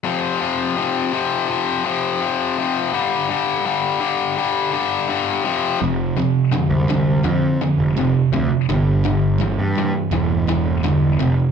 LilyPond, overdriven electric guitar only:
\new Staff \with { instrumentName = "Overdriven electric guitar" } { \clef bass \time 4/4 \key g \dorian \tempo 4 = 83 <f, c f>8 <f, c f>8 <f, c f>8 <f, c f>8 <f, c f>8 <f, c f>8 <f, c f>8 <f, c f>8 | <g, d g>8 <g, d g>8 <g, d g>8 <g, d g>8 <g, d g>8 <g, d g>8 <g, d g>8 <f, c f>8 | <f, c>8 <f, c>8 <f, d>8 <f, d>8 <f, d>8 <f, d>8 <f, c>8 <f, c>8 | <g, d>8 <g, d>8 <g, e>8 <g, e>8 <g, e>8 <g, e>8 <g, d>8 <f, c>8 | }